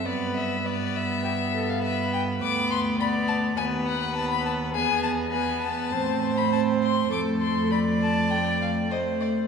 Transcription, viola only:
\new Staff \with { instrumentName = "Viola" } { \time 4/4 \key g \mixolydian \tempo 4 = 102 b4 b2. | \key f \lydian b4 b4 b4 b4 | b4 b4 c'4 c'4 | a2 a4 a4 | }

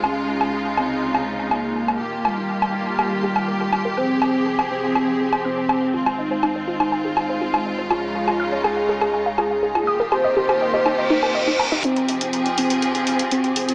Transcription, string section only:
\new Staff \with { instrumentName = "String section" } { \time 4/4 \key f \minor \tempo 4 = 122 << { <aes f'>1 | <bes g'>1 | <c' aes'>1 | <aes f'>1~ |
<aes f'>1 | <bes g'>1 | <c' aes'>1 | } \\ { <des ees'>1 | <ees f'>1 | f1 | r1 |
<des ees'>1 | <ees f'>1 | <f g'>1 | } >> }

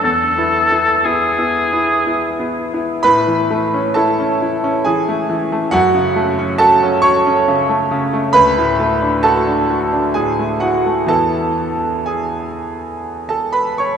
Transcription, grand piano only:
<<
  \new Staff \with { instrumentName = "Grand piano" } { \time 3/4 \key a \major \tempo 4 = 66 r2. | <b' b''>4 <a' a''>4 <gis' gis''>4 | <fis' fis''>4 <a' a''>8 <cis'' cis'''>4. | <b' b''>4 <a' a''>4 <gis' gis''>8 <fis' fis''>8 |
<a' a''>4 <gis' gis''>4~ <gis' gis''>16 <a' a''>16 <b' b''>16 <cis'' cis'''>16 | }
  \new Staff \with { instrumentName = "Grand piano" } { \time 3/4 \key a \major \tuplet 3/2 { e,8 <b e'>8 <b e'>8 <b e'>8 <b e'>8 <b e'>8 <b e'>8 <b e'>8 <b e'>8 } | a,16 e16 a16 cis'16 e'16 cis'16 e'16 cis'16 e16 a16 e16 a16 | fis,16 cis16 a16 cis'16 fis'16 cis'16 fis'16 cis'16 cis16 a16 cis16 a16 | d,16 a,16 a16 d'16 fis'16 d'16 fis'16 d'16 a,16 a16 a,16 a16 |
<e, e b e'>2. | }
>>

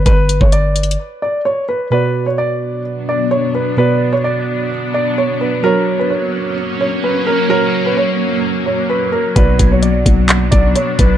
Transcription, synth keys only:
\new Staff \with { instrumentName = "Synth keys" } { \time 4/4 \key b \minor \tempo 4 = 129 r1 | <b, b fis' d''>1 | <b, b fis' d''>1 | <fis fis' ais' cis''>1 |
<fis fis' ais' cis''>1 | <b, b fis' d''>1 | }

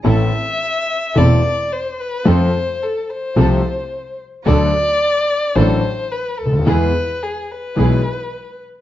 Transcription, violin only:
\new Staff \with { instrumentName = "Violin" } { \time 4/4 \key a \minor \tempo 4 = 109 e''2 d''4 c''8 b'8 | c''4 a'8 c''2 r8 | d''2 c''4 b'8 a'8 | b'4 gis'8 b'2 r8 | }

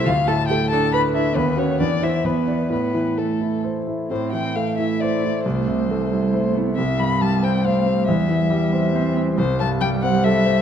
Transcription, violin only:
\new Staff \with { instrumentName = "Violin" } { \time 3/4 \key a \minor \tempo 4 = 136 f''8 a''8 g''8 a''8 b''8 e''8 | b'8 cis''8 d''8 e''8 b'4 | b'4 a'4 r4 | c''8 g''8 f''8 e''8 d''4 |
c''2~ c''8 r8 | e''8 b''8 a''8 g''8 f''4 | e''2~ e''8 r8 | \key a \dorian c''8 a''8 g''8 fis''8 e''4 | }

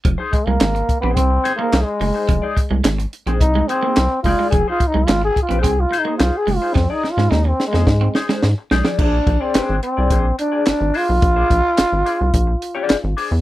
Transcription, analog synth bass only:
\new Staff \with { instrumentName = "Analog synth bass" } { \clef bass \time 4/4 \key f \dorian \tempo 4 = 108 f,,16 r8 c,16 aes,,8 r16 bes,,16 c,8 r8 c,16 r16 ges,,16 r16 | f,,16 r8 c,16 aes,,8 r16 bes,,16 c,8 r8 c,16 r16 ges,,16 r16 | f,,16 r8 c,16 aes,,8 r16 bes,,16 c,8 r8 c,16 r16 ges,,16 r16 | f,16 r8 aes,16 ees,8 r16 f,16 aes,8 r8 aes,16 r16 b,,16 r16 |
bes,,8 bes,,16 r16 aes,,16 aes,,16 r16 c,16 bes,,8 r8 aes,,16 aes,,16 r16 b,,16 | bes,,8 bes,,16 r16 aes,,16 aes,,16 r16 c,16 bes,,8 r8 aes,,16 aes,,16 r16 e,16 | }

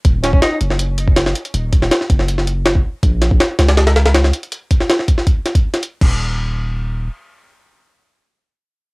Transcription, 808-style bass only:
\new Staff \with { instrumentName = "808-style bass" } { \clef bass \time 4/4 \key ees \minor \tempo 4 = 161 ees,,8. ees,,16 r8 ges,,2 r8 | ees,,8. ees,,16 r8 ges,,2 r8 | bes,,8. bes,,16 r8 des,2 r8 | r1 |
ees,,2. r4 | r1 | }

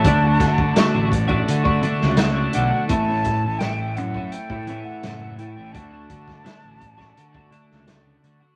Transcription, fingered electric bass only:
\new Staff \with { instrumentName = "Fingered electric bass" } { \clef bass \time 4/4 \key d \major \tempo 4 = 84 d,8 d8 r16 a,,8. d8 r16 cis,8. b,,16 r16 | a,,8 r16 a,,8. fis,8 r16 a,8 r16 fis,,8 r16 a,,16 | d,8 d8 r16 a,,8. d8 r16 cis,8. d16 r16 | }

